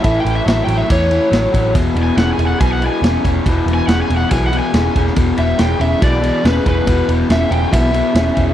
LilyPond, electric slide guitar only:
\new Staff \with { instrumentName = "Electric slide guitar" } { \time 4/4 \key e \major \tempo 4 = 141 \tuplet 3/2 { e''8 g''8 e''8 e''8 g''8 e''8 } cis''2 | \tuplet 3/2 { r4 gis''8 fis''8 gis''8 fis''8 gis''8 fis''8 gis''8~ } gis''8 r8 | \tuplet 3/2 { r4 gis''8 fis''8 gis''8 fis''8 gis''8 fis''8 gis''8~ } gis''8 r8 | r8 e''8 g''8 e''8 d''4 b'8 b'8~ |
b'8 r8 e''8 g''8 e''2 | }